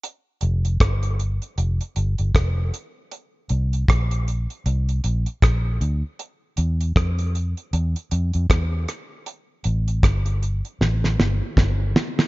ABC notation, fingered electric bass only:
X:1
M:4/4
L:1/16
Q:"Swing 16ths" 1/4=78
K:F
V:1 name="Fingered electric bass" clef=bass
z2 F,,,2 G,,,3 z F,,, z G,,, G,,, F,,,2 z2 | z2 C,,2 B,,,3 z C,,2 B,,, z B,,,2 D,, z | z2 E,,2 F,,3 z E,, z F,, F,, E,,2 z2 | z2 A,,,2 G,,,3 z A,,,2 G,,, z G,,,2 z2 |]